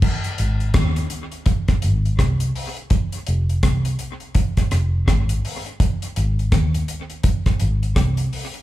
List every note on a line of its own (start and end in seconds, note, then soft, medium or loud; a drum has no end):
0.02 kick loud
0.02 crash medium
0.24 closed hi-hat medium
0.38 0.71 G#1 medium
0.38 closed hi-hat medium
0.60 closed hi-hat soft
0.74 1.06 D#2 medium
0.74 kick loud
0.74 cross-stick loud
0.74 closed hi-hat loud
0.96 closed hi-hat medium
1.10 closed hi-hat medium
1.32 closed hi-hat soft
1.46 kick loud
1.46 closed hi-hat medium
1.68 kick medium
1.68 cross-stick medium
1.68 closed hi-hat soft
1.82 2.15 G#1 medium
1.82 closed hi-hat medium
2.05 closed hi-hat soft
2.19 2.51 C2 medium
2.19 kick medium
2.19 cross-stick loud
2.19 closed hi-hat medium
2.40 closed hi-hat medium
2.56 open hi-hat medium
2.76 closed hi-hat soft
2.90 kick loud
2.90 closed hi-hat medium
3.12 closed hi-hat medium
3.27 3.60 F1 medium
3.27 closed hi-hat medium
3.49 closed hi-hat soft
3.63 3.95 C2 medium
3.63 kick loud
3.63 cross-stick loud
3.63 closed hi-hat loud
3.85 closed hi-hat medium
3.99 closed hi-hat medium
4.20 closed hi-hat soft
4.35 kick loud
4.35 closed hi-hat medium
4.57 kick medium
4.57 cross-stick medium
4.57 closed hi-hat medium
4.71 5.04 F1 medium
4.71 cross-stick medium
4.71 closed hi-hat medium
5.08 5.40 G#1 medium
5.08 kick medium
5.08 cross-stick loud
5.08 closed hi-hat medium
5.29 closed hi-hat medium
5.45 open hi-hat medium
5.66 closed hi-hat soft
5.80 kick loud
5.80 closed hi-hat medium
6.02 closed hi-hat medium
6.16 6.48 G#1 loud
6.16 closed hi-hat medium
6.39 closed hi-hat soft
6.52 6.84 D#2 medium
6.52 kick loud
6.52 cross-stick loud
6.52 closed hi-hat loud
6.74 closed hi-hat medium
6.88 closed hi-hat medium
7.10 closed hi-hat soft
7.24 kick loud
7.24 closed hi-hat medium
7.46 kick medium
7.46 cross-stick medium
7.46 closed hi-hat medium
7.60 7.93 G#1 medium
7.60 closed hi-hat medium
7.83 closed hi-hat soft
7.96 8.28 C2 medium
7.96 kick loud
7.96 cross-stick loud
7.96 closed hi-hat medium
8.17 closed hi-hat medium
8.33 open hi-hat medium
8.54 closed hi-hat soft